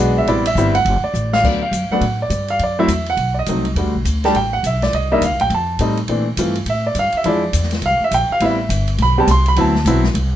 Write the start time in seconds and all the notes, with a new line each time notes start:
Already playing: B1 G#3 B3 D4 F#4
0.18 E5
0.26 A1 G3 B3 C4 E4 D5, ride
0.45 E5, ride
0.55 G1 G3 B3 C4 E4, hi-hat pedal
0.75 F#5, ride
0.85 F#1, ride
1.03 D5, muted upright bass stroke
1.14 A1, hi-hat pedal
1.33 F5, snare
1.43 D2 F#3 A3 B3 D4 D5, kick, crash
1.62 F5
1.71 F#2, hi-hat pedal, ride
1.90 F#3 A3 B3 D4 F#5, muted upright bass stroke
2.01 A2, ride
2.22 D5
2.30 G2, hi-hat pedal, ride
2.48 F5, ride
2.59 F#2, ride
2.63 D5
2.79 F#3 A3 C4 E4 E5
2.88 E2, hi-hat pedal, ride
3.06 F#5, ride
3.17 B1, ride
3.39 D#5
3.46 C2 F#3 A3 C4 D#4, hi-hat pedal, ride
3.65 ride
3.75 E2 G3 A3 D4 F#4, ride
3.86 D2
3.95 B1
4.05 D2, hi-hat pedal, ride
4.24 G3 A3 D4 G4 A5, snare, ride
4.34 A1 G5, ride
4.53 F#5
4.63 B1 E5, hi-hat pedal, ride
4.82 D5, snare, ride
4.93 C2 D#5, ride
5.12 G3 A#3 D4 D#4 E5
5.21 D#2 F5, hi-hat pedal, ride
5.31 C2
5.40 A#1 G5, ride
5.50 F2, ride
5.54 A5
5.79 A2 G3 A3 C4 D#4, hi-hat pedal, ride
5.97 ride
6.08 A#2 E3 A3 C4 D4, ride
6.37 G2 E3 A3 C4 F4, hi-hat pedal, ride
6.55 ride
6.66 A2 E5, ride
6.87 D5
6.95 G2, hi-hat pedal, ride
6.99 F5
7.12 muted upright bass stroke, ride
7.17 E5
7.24 F2 F3 G#3 D4 E4, ride
7.29 D5
7.53 E2, hi-hat pedal, ride
7.63 snare
7.71 snare, ride
7.82 C2 F5, ride
8.00 muted upright bass stroke
8.04 E5
8.11 A#1 G5, hi-hat pedal, ride
8.30 F5, muted upright bass stroke
8.40 A1 G3 B3 C4 E4, ride
8.45 E5
8.69 G1, hi-hat pedal, ride
8.88 ride
8.98 B1, ride
9.02 B5
9.18 G3 B3 C4 G4 A5
9.27 C2, hi-hat pedal, ride
9.31 C6
9.46 B5, ride
9.56 D2 F#3 B3 C4 E4, ride
9.60 A5
9.75 snare
9.85 B1 F#3 B3 C4 E4, hi-hat pedal, ride
10.04 snare
10.14 C2, ride